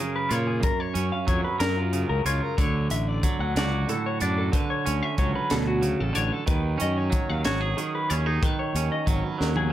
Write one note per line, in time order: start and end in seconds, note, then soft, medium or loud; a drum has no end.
0.00 0.59 F#2 medium
0.00 0.64 C#3 medium
0.00 0.94 C#4 medium
0.00 0.15 G#4 medium
0.00 0.61 A#4 medium
0.16 0.31 B4 medium
0.29 0.60 A#2 medium
0.29 0.59 F4 medium
0.29 0.48 C#5 medium
0.29 closed hi-hat medium
0.47 0.64 G#4 medium
0.60 2.57 F#2 medium
0.60 0.80 A#4 medium
0.60 kick medium
0.60 closed hi-hat medium
0.80 1.12 C#5 medium
0.94 1.10 F#2 medium
0.94 2.61 C#4 medium
0.94 closed hi-hat medium
1.12 1.28 F5 medium
1.27 1.43 F2 medium
1.27 3.23 F#3 medium
1.27 1.44 C#5 medium
1.27 kick medium
1.27 closed hi-hat medium
1.44 1.60 B4 medium
1.60 2.04 F#2 medium
1.60 2.54 A#4 medium
1.60 1.77 A#4 medium
1.60 snare loud
1.60 closed hi-hat medium
1.77 2.10 F4 medium
1.93 2.57 C#3 medium
1.93 closed hi-hat medium
2.09 2.24 C#2 medium
2.09 2.26 A#4 medium
2.25 2.40 C#2 medium
2.25 2.55 F4 soft
2.25 2.42 C#5 medium
2.25 closed hi-hat medium
2.42 2.59 A#4 medium
2.58 2.87 D2 medium
2.58 4.49 D3 medium
2.58 2.91 C#5 medium
2.58 kick loud
2.58 closed hi-hat medium
2.90 3.19 A1 medium
2.90 3.08 E5 medium
2.90 closed hi-hat medium
3.08 3.40 D5 medium
3.23 5.18 F#3 medium
3.23 kick medium
3.23 closed hi-hat medium
3.39 3.54 D2 medium
3.39 3.56 F#5 medium
3.56 3.84 C#2 medium
3.56 7.07 F#4 medium
3.56 3.89 D5 medium
3.56 snare loud
3.56 closed hi-hat medium
3.88 4.49 A2 medium
3.88 4.05 A4 medium
3.88 closed hi-hat medium
4.06 4.21 C#5 medium
4.20 4.50 F#2 medium
4.20 4.50 D4 soft
4.20 4.38 D5 medium
4.20 closed hi-hat medium
4.38 4.54 A4 medium
4.52 5.81 D3 medium
4.52 4.70 B4 medium
4.52 kick medium
4.52 closed hi-hat medium
4.70 5.03 C#5 medium
4.86 5.01 D2 medium
4.86 6.50 C#4 medium
4.86 closed hi-hat medium
5.03 5.18 E5 medium
5.18 5.32 C#2 medium
5.18 7.10 F#3 medium
5.18 5.35 C#5 medium
5.18 kick medium
5.18 closed hi-hat soft
5.35 5.51 B4 medium
5.50 5.94 D2 medium
5.50 5.83 B2 medium
5.50 5.67 A4 medium
5.50 snare loud
5.50 closed hi-hat medium
5.67 6.00 F#4 medium
5.82 6.13 C#3 medium
5.82 closed hi-hat medium
6.00 6.14 A1 medium
6.00 6.15 A4 medium
6.13 6.30 A1 medium
6.13 6.46 D3 medium
6.13 6.32 C#5 medium
6.13 closed hi-hat medium
6.32 6.47 A4 medium
6.47 6.76 D#2 medium
6.47 7.76 D#3 medium
6.47 6.80 B4 medium
6.47 kick loud
6.47 closed hi-hat medium
6.78 7.09 F#2 medium
6.78 8.10 C#4 medium
6.78 6.97 D#5 medium
6.78 closed hi-hat medium
6.97 7.30 C#5 medium
7.10 9.05 F#3 medium
7.10 kick medium
7.10 closed hi-hat medium
7.29 7.43 D#2 medium
7.29 7.45 F5 medium
7.45 7.73 G#1 medium
7.45 7.61 F#4 medium
7.45 7.77 C#5 medium
7.45 snare loud
7.45 closed hi-hat medium
7.61 8.42 G#4 medium
7.77 8.38 D#3 medium
7.77 7.93 G#4 medium
7.77 closed hi-hat medium
7.95 8.10 B4 medium
8.10 8.38 D#2 medium
8.10 8.26 C#4 medium
8.10 8.26 C#5 medium
8.10 closed hi-hat medium
8.26 8.42 D#4 medium
8.26 8.43 G#4 medium
8.43 9.70 D#3 medium
8.43 8.59 B4 medium
8.43 kick loud
8.43 closed hi-hat medium
8.59 8.91 C#5 medium
8.75 8.88 D#2 medium
8.75 9.73 C#4 medium
8.75 closed hi-hat medium
8.92 9.08 D#5 medium
9.07 9.21 G#1 medium
9.07 9.37 F#3 medium
9.07 9.24 C#5 medium
9.07 kick medium
9.07 closed hi-hat medium
9.24 9.40 B4 medium
9.38 9.73 D#2 medium
9.38 9.71 F#3 medium
9.38 9.56 A#4 medium
9.38 snare medium
9.56 9.73 G#4 medium
9.56 high tom soft